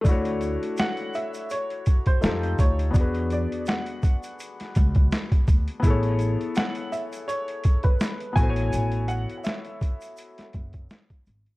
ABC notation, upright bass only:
X:1
M:4/4
L:1/16
Q:"Swing 16ths" 1/4=83
K:A
V:1 name="Upright bass" clef=bass
D,,3 z8 z =F,,2 D,,2 | E,,3 z6 z C,,2 z2 D,, z | A,,,3 z8 z3 A,,,2 | A,,,3 z6 z F,,,2 z2 G,,, z |]